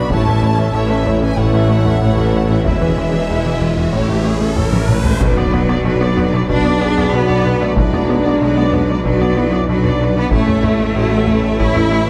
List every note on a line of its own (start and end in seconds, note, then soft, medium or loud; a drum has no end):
0.00 0.12 B1 medium
0.00 0.10 B3 medium
0.00 0.11 F#4 medium
0.00 0.11 D5 medium
0.00 0.11 B5 loud
0.09 2.67 A1 medium
0.09 0.67 A1 medium
0.09 0.67 A2 medium
0.09 0.21 A2 medium
0.09 0.25 A3 medium
0.09 2.62 A3 medium
0.09 3.30 C#4 medium
0.09 0.25 E4 medium
0.09 4.85 E4 medium
0.09 0.26 C#5 medium
0.09 0.74 A5 loud
0.09 taiko loud
0.09 riser medium
0.25 0.42 E3 medium
0.25 0.37 A3 medium
0.25 0.42 C#4 medium
0.25 0.43 A4 medium
0.25 0.43 E5 medium
0.25 taiko low-mid soft
0.41 0.58 A3 medium
0.41 0.52 A3 medium
0.41 0.58 E4 medium
0.41 0.60 C#5 medium
0.41 taiko low-mid medium
0.56 0.73 E3 medium
0.56 0.68 A3 medium
0.56 0.73 C#4 medium
0.56 0.75 A4 medium
0.56 0.75 E5 medium
0.73 1.31 A1 medium
0.73 0.84 A2 medium
0.73 1.31 A2 medium
0.73 4.89 E3 medium
0.73 0.88 A3 medium
0.73 0.89 E4 medium
0.73 0.90 C#5 medium
0.73 1.23 E5 medium
0.89 1.06 E3 medium
0.89 1.00 A3 medium
0.89 1.06 C#4 medium
0.89 1.06 A4 medium
0.89 1.06 E5 medium
1.05 1.22 A3 medium
1.05 1.16 A3 medium
1.05 1.22 E4 medium
1.05 1.23 C#5 medium
1.05 taiko low-mid medium
1.21 1.32 A2 medium
1.21 1.38 E3 medium
1.21 1.38 C#4 medium
1.21 1.38 A4 medium
1.21 1.38 E5 medium
1.21 1.39 G#5 medium
1.37 1.94 A1 medium
1.37 1.47 A2 medium
1.37 1.95 A2 medium
1.37 1.53 A3 medium
1.37 1.53 E4 medium
1.37 1.53 C#5 medium
1.37 2.66 F#5 medium
1.37 taiko medium
1.53 1.70 E3 medium
1.53 1.63 A3 medium
1.53 1.70 C#4 medium
1.53 1.70 A4 medium
1.53 1.70 E5 medium
1.53 taiko low-mid soft
1.69 1.86 A3 medium
1.69 1.79 A3 medium
1.69 1.85 E4 medium
1.69 1.85 C#5 medium
1.85 2.01 E3 medium
1.85 1.95 A3 medium
1.85 2.01 C#4 medium
1.85 2.02 A4 medium
1.85 2.02 E5 medium
1.85 taiko low-mid soft
2.01 2.58 A1 medium
2.01 2.11 A2 medium
2.01 2.58 A2 medium
2.01 2.16 A3 medium
2.01 2.16 E4 medium
2.01 2.17 C#5 medium
2.17 2.27 A2 medium
2.17 2.34 E3 medium
2.17 2.33 C#4 medium
2.17 2.33 A4 medium
2.17 2.33 E5 medium
2.17 taiko low-mid medium
2.33 2.44 A2 medium
2.33 2.49 A3 medium
2.33 2.49 E4 medium
2.33 2.50 C#5 medium
2.49 2.60 A2 medium
2.49 2.65 E3 soft
2.49 2.65 C#4 medium
2.49 2.66 A4 medium
2.49 2.66 E5 medium
2.64 3.95 E1 medium
2.64 3.22 E1 medium
2.64 2.76 E2 medium
2.64 3.22 E2 medium
2.64 2.80 G#3 medium
2.64 3.91 G#3 medium
2.64 2.80 E4 medium
2.64 2.80 B4 medium
2.64 3.90 E5 loud
2.64 taiko loud
2.81 2.97 E3 soft
2.81 2.91 E3 medium
2.81 2.97 B3 medium
2.81 2.98 G#4 soft
2.81 2.98 E5 soft
2.81 taiko low-mid soft
2.97 3.07 E3 medium
2.97 3.13 G#3 medium
2.97 3.13 E4 soft
2.97 3.14 B4 soft
2.97 taiko low-mid medium
3.13 3.29 E3 soft
3.13 3.23 E3 medium
3.13 3.29 B3 soft
3.13 3.30 G#4 soft
3.13 3.29 E5 soft
3.29 3.86 E1 medium
3.29 3.86 E2 medium
3.29 3.39 E2 medium
3.29 3.44 G#3 medium
3.29 3.77 B3 medium
3.29 3.44 E4 medium
3.29 3.45 B4 medium
3.44 3.61 E3 soft
3.44 3.56 E3 medium
3.44 3.61 B3 soft
3.44 3.62 G#4 soft
3.44 3.62 E5 soft
3.60 3.71 E3 medium
3.60 3.77 G#3 soft
3.60 3.77 E4 soft
3.60 3.78 B4 soft
3.60 taiko low-mid medium
3.76 3.87 E2 medium
3.76 3.93 E3 soft
3.76 3.93 B3 soft
3.76 3.94 G#4 soft
3.76 3.94 E5 soft
3.92 4.49 A1 medium
3.92 4.50 A1 medium
3.92 5.21 A1 medium
3.92 4.02 A2 medium
3.92 4.50 A2 medium
3.92 4.08 A3 medium
3.92 4.87 A3 soft
3.92 4.88 C#4 medium
3.92 4.08 E4 medium
3.92 4.57 C#5 medium
3.92 4.09 C#5 soft
3.92 taiko medium
4.08 4.25 E3 soft
4.08 4.19 A3 medium
4.08 4.25 C#4 soft
4.08 4.26 A4 soft
4.08 4.26 E5 soft
4.08 taiko low-mid soft
4.24 4.34 A3 medium
4.24 4.41 A3 soft
4.24 4.41 E4 soft
4.24 4.42 C#5 soft
4.41 4.57 E3 soft
4.41 4.51 A3 medium
4.41 4.57 C#4 soft
4.41 4.58 A4 soft
4.41 4.58 E5 soft
4.41 taiko low-mid soft
4.56 5.13 A1 medium
4.56 4.66 A2 loud
4.56 5.14 A2 medium
4.56 5.02 E3 medium
4.56 4.72 A3 soft
4.56 4.72 E4 soft
4.56 4.73 C#5 soft
4.56 taiko low-mid medium
4.72 4.82 A2 medium
4.72 4.89 E3 soft
4.72 4.89 C#4 soft
4.72 4.90 A4 soft
4.72 4.90 E5 soft
4.72 taiko high medium
4.89 4.99 A2 medium
4.89 5.05 A3 soft
4.89 5.05 E4 soft
4.89 5.06 C#5 soft
4.89 taiko mid medium
5.05 5.15 A2 medium
5.05 5.21 E3 soft
5.05 5.22 G#3 medium
5.05 5.21 C#4 soft
5.05 5.22 A4 soft
5.05 5.22 E5 soft
5.05 taiko low medium
5.21 5.78 B1 medium
5.21 10.33 B1 medium
5.21 5.31 B2 loud
5.21 10.28 F#3 medium
5.21 6.49 F#3 loud
5.21 10.28 D4 medium
5.21 5.36 B4 medium
5.21 5.37 D5 medium
5.21 taiko loud
5.21 impact medium
5.37 5.47 B3 medium
5.37 5.54 B4 medium
5.37 5.53 D5 medium
5.37 5.54 D5 medium
5.37 taiko low-mid medium
5.53 5.63 B3 medium
5.53 5.69 B4 medium
5.53 5.70 B4 medium
5.53 5.70 D5 medium
5.53 taiko low-mid medium
5.69 5.79 B3 medium
5.69 5.86 B4 medium
5.69 5.85 D5 medium
5.69 5.86 D5 medium
5.69 taiko rim soft
5.85 6.41 B1 medium
5.85 5.95 B2 loud
5.85 6.00 B4 medium
5.85 6.01 B4 medium
5.85 6.01 D5 medium
6.01 6.11 B3 medium
6.01 6.18 B4 medium
6.01 6.17 D5 medium
6.01 6.18 D5 medium
6.17 6.27 B3 medium
6.17 6.33 B4 medium
6.17 6.35 D5 medium
6.17 taiko low-mid medium
6.33 6.43 B2 medium
6.33 6.50 B4 medium
6.33 6.49 D5 medium
6.33 6.50 D5 medium
6.33 taiko rim soft
6.49 7.05 B1 medium
6.49 6.59 B2 loud
6.49 7.12 D4 loud
6.49 6.79 F#4 medium
6.49 6.64 B4 medium
6.49 6.65 D5 medium
6.49 taiko medium
6.65 6.74 B3 medium
6.65 6.82 B4 medium
6.65 6.81 D5 medium
6.65 taiko low-mid medium
6.80 6.91 B3 medium
6.80 7.13 G#4 medium
6.80 6.96 B4 medium
6.80 6.97 B4 medium
6.80 6.98 D5 medium
6.96 7.07 B3 medium
6.96 7.14 B4 medium
6.96 7.13 D5 medium
6.96 taiko low-mid medium
7.13 7.69 B1 medium
7.13 7.60 B1 medium
7.13 7.23 B2 loud
7.13 7.61 B3 loud
7.13 7.77 F#4 medium
7.13 7.28 B4 medium
7.13 7.28 D5 medium
7.29 7.39 B2 medium
7.29 7.46 B4 medium
7.29 7.45 D5 medium
7.29 taiko low-mid medium
7.45 7.55 B2 medium
7.45 7.61 B4 medium
7.45 7.61 D5 medium
7.61 7.71 B2 medium
7.61 7.78 A3 medium
7.61 7.77 B4 medium
7.61 7.77 D5 medium
7.76 8.33 B1 medium
7.76 7.87 B2 loud
7.76 9.05 G#3 loud
7.76 8.08 E4 medium
7.76 7.91 B4 medium
7.76 7.92 B4 medium
7.76 7.92 D5 medium
7.76 taiko loud
7.92 8.03 B3 medium
7.92 8.10 B4 medium
7.92 8.08 D5 medium
7.92 8.09 D5 medium
7.92 taiko low-mid medium
8.09 8.19 B3 medium
8.09 9.04 D4 medium
8.09 8.24 B4 medium
8.09 8.25 B4 medium
8.09 8.25 D5 medium
8.09 taiko low-mid medium
8.25 8.35 B3 medium
8.25 8.41 B4 medium
8.25 8.41 D5 medium
8.40 8.97 B1 medium
8.40 8.51 B2 loud
8.40 8.55 B4 medium
8.40 8.56 B4 medium
8.40 8.57 D5 medium
8.56 8.67 B3 medium
8.56 8.74 B4 medium
8.56 8.72 D5 medium
8.72 8.83 B3 medium
8.72 8.88 B4 medium
8.72 8.89 B4 medium
8.72 8.90 D5 medium
8.72 taiko low-mid medium
8.87 8.99 B2 medium
8.87 9.05 B4 medium
8.87 9.04 D5 medium
8.87 9.05 D5 medium
9.03 9.61 B1 medium
9.03 9.14 B2 loud
9.03 9.67 F#3 medium
9.03 9.36 F#4 medium
9.03 9.18 B4 medium
9.03 9.20 B4 medium
9.03 taiko medium
9.07 9.21 D5 medium
9.20 9.31 B3 medium
9.20 9.36 D5 medium
9.20 9.37 D5 medium
9.20 taiko low-mid medium
9.24 9.38 B4 medium
9.36 9.46 B3 medium
9.36 9.69 E4 medium
9.36 9.52 B4 medium
9.36 9.53 B4 medium
9.36 9.53 D5 medium
9.52 9.62 B3 medium
9.52 9.69 B4 medium
9.52 9.68 D5 medium
9.52 taiko low-mid medium
9.67 10.25 B1 medium
9.67 9.78 B2 loud
9.67 10.15 F#3 medium
9.67 10.32 D4 medium
9.67 9.82 B4 medium
9.67 9.83 B4 medium
9.67 9.84 D5 medium
9.82 9.94 B2 medium
9.82 9.99 D5 medium
9.82 10.00 D5 medium
9.82 taiko low-mid medium
9.86 10.01 B4 medium
10.00 10.10 B2 medium
10.00 10.16 B4 medium
10.00 10.16 D5 medium
10.15 10.26 B2 medium
10.15 10.33 B3 medium
10.15 10.33 B4 medium
10.15 10.32 D5 medium
10.30 12.10 A1 medium
10.30 10.88 A1 medium
10.30 10.42 A2 medium
10.30 12.10 E3 medium
10.30 11.57 A3 loud
10.30 12.10 C#4 medium
10.30 10.64 C#4 medium
10.30 10.47 E4 medium
10.30 10.48 C#5 medium
10.30 10.46 A5 medium
10.30 taiko loud
10.47 10.57 A3 medium
10.47 10.64 A4 medium
10.47 10.63 E5 medium
10.47 10.65 E5 medium
10.47 taiko low-mid medium
10.63 10.74 A3 medium
10.63 10.80 E4 medium
10.63 10.96 E4 medium
10.63 10.80 C#5 medium
10.63 10.79 A5 medium
10.63 taiko low-mid medium
10.79 10.89 A3 medium
10.79 10.96 A4 medium
10.79 10.95 E5 medium
10.79 10.96 E5 medium
10.94 11.52 A1 medium
10.94 11.05 A2 loud
10.94 11.11 E4 medium
10.94 11.27 F#4 medium
10.94 11.12 C#5 medium
10.94 11.10 A5 medium
11.11 11.21 A3 medium
11.11 11.28 A4 medium
11.11 11.27 E5 medium
11.11 11.28 E5 medium
11.26 11.37 A3 medium
11.26 11.59 E4 medium
11.26 11.44 E4 medium
11.26 11.44 C#5 medium
11.26 11.43 A5 medium
11.26 taiko low-mid medium
11.43 11.53 A2 medium
11.43 11.60 A4 medium
11.43 11.59 E5 medium
11.43 11.60 E5 medium
11.58 12.10 A1 medium
11.58 11.69 A2 loud
11.58 11.90 C#4 medium
11.58 11.74 E4 medium
11.58 12.10 E4 loud
11.58 11.75 C#5 medium
11.58 11.74 A5 medium
11.58 taiko medium
11.75 11.85 A3 medium
11.75 11.91 A4 medium
11.75 11.91 E5 medium
11.75 11.93 E5 medium
11.75 taiko low-mid medium
11.91 12.01 A3 medium
11.91 12.10 E4 medium
11.91 12.07 E4 medium
11.91 12.08 C#5 medium
11.91 12.07 A5 medium
12.07 taiko low-mid soft